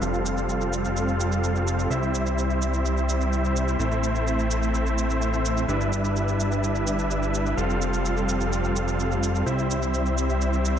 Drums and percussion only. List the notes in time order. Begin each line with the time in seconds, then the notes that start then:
0.02 shaker
0.14 shaker
0.26 shaker
0.38 shaker
0.49 shaker
0.61 shaker
0.73 shaker
0.85 shaker
0.97 shaker
1.08 shaker
1.20 shaker
1.32 shaker
1.44 shaker
1.56 shaker
1.67 shaker
1.79 shaker
1.91 shaker
2.03 shaker
2.15 shaker
2.26 shaker
2.38 shaker
2.50 shaker
2.62 shaker
2.74 shaker
2.86 shaker
2.97 shaker
3.09 shaker
3.21 shaker
3.33 shaker
3.45 shaker
3.56 shaker
3.68 shaker
3.80 shaker
3.92 shaker
4.04 shaker
4.15 shaker
4.27 shaker
4.39 shaker
4.51 shaker
4.63 shaker
4.75 shaker
4.86 shaker
4.98 shaker
5.10 shaker
5.22 shaker
5.34 shaker
5.45 shaker
5.57 shaker
5.69 shaker
5.81 shaker
5.93 shaker
6.05 shaker
6.16 shaker
6.28 shaker
6.40 shaker
6.52 shaker
6.64 shaker
6.75 shaker
6.87 shaker
6.99 shaker
7.11 shaker
7.23 shaker
7.34 shaker
7.46 shaker
7.58 shaker
7.70 shaker
7.82 shaker
7.93 shaker
8.05 shaker
8.17 shaker
8.29 shaker
8.41 shaker
8.52 shaker
8.64 shaker
8.76 shaker
8.88 shaker
9.00 shaker
9.12 shaker
9.23 shaker
9.35 shaker
9.47 shaker
9.59 shaker
9.71 shaker
9.82 shaker
9.94 shaker
10.06 shaker
10.18 shaker
10.30 shaker
10.41 shaker
10.53 shaker
10.65 shaker